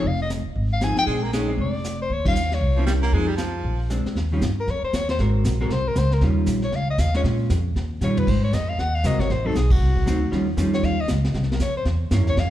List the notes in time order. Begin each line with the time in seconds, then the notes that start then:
0.04 F1 F5, brush sweep, kick
0.22 D#5
0.30 snare, hi-hat pedal
0.46 muted upright bass stroke
0.55 G#1, brush sweep, kick
0.73 F5
0.81 F3 C4 D#4 G#4 G#5, snare, hi-hat pedal
0.97 G5, muted upright bass stroke, snare
1.07 A#1 G#3 C4 D4, brush sweep, kick
1.24 A#3
1.33 G#3 A3 C#4 D#4, snare, hi-hat pedal
1.47 G#3 C4 D4
1.58 F1 D5, brush sweep, kick
1.84 snare, hi-hat pedal
2.02 C5
2.10 D#2 C#5, brush sweep, kick
2.25 D#3 G3 C#4 F4 F5, kick, ride
2.36 hi-hat pedal
2.51 C#5, snare
2.61 C2, brush sweep, kick
2.76 F3 A#3 C#4 E4
2.86 G3, snare, hi-hat pedal
3.03 A#3, snare
3.12 F2 F3 G#3 C4 D#4 G#4, brush sweep, kick
3.28 G3
3.37 F3, snare, hi-hat pedal
3.64 A#1, brush sweep, kick
3.90 G#3 C4 D4, snare, hi-hat pedal
4.06 muted upright bass stroke, snare
4.15 D#2, brush sweep, kick, snare
4.32 D#3 G3 C#4 F4
4.41 G2, kick, snare, hi-hat pedal
4.60 A#4
4.67 F2 C#5, brush sweep, kick, snare
4.83 C5, muted upright bass stroke
4.93 D#2 C#5, kick, snare, hi-hat pedal
5.09 C5, snare
5.18 G#1 G#3 C4 F#4 A#4, brush sweep, kick, snare
5.44 A#1, kick, snare, hi-hat pedal
5.61 G#3 C4 F#4 G#4 A#4
5.70 C2 C5, brush sweep, kick, snare
5.88 A#4
5.95 C#2 C5, kick, snare, hi-hat pedal
6.11 A#4, snare
6.21 D#2 D#3 G3 C#4 F4, brush sweep, kick, snare
6.46 A#1, kick, snare, hi-hat pedal
6.62 C#5, snare
6.72 C#2 F5, brush sweep, kick, snare
6.90 D#5
6.98 D#2 F5, kick, snare, hi-hat pedal
7.14 G#3 C#4 F4 C#5, snare
7.24 A#2, brush sweep, kick, snare
7.50 F2, kick, snare, hi-hat pedal
7.76 D#2, brush sweep, kick, snare
8.01 A#2 D#3 G3 C#4 F4 C#5, snare, hi-hat pedal
8.17 B4, floor tom
8.27 G#2 C5, brush sweep, kick, snare, crash
8.44 C#5
8.53 F2 D#5, kick, snare, hi-hat pedal
8.69 F5
8.78 D#2 F#5, brush sweep, kick, snare
8.95 F5
9.04 C2 G#3 C4 F#4 A#4 D#5, kick, snare, hi-hat pedal
9.19 C#5, kick, snare
9.29 A1 C5, brush sweep, kick, snare
9.45 F#3 C4 D#4 A4
9.55 B1 G#4, kick, snare, hi-hat pedal
9.70 F#4, kick, ride
9.80 C2, brush sweep
9.96 kick
10.06 D2 F#3 C4 D#4, kick, snare, hi-hat pedal
10.31 D#2 D#3 G3 C#4 F4, brush sweep, kick, snare
10.57 F2 D#3 G3 C#4 F4, kick, snare, hi-hat pedal
10.73 C#5, snare
10.83 D#2 F5, brush sweep, kick, snare
11.01 D#5
11.08 C#2, kick, snare, hi-hat pedal
11.24 snare
11.34 C2, brush sweep, kick, snare
11.43 snare
11.52 A#4, snare
11.60 F2 C#5, kick, snare, hi-hat pedal
11.77 C5
11.85 E2, brush sweep, kick, snare
12.11 G2 A#3 C#4 E4, kick, snare, hi-hat pedal
12.20 E2
12.27 C2 C#5, snare
12.37 F2 F5, brush sweep, kick, snare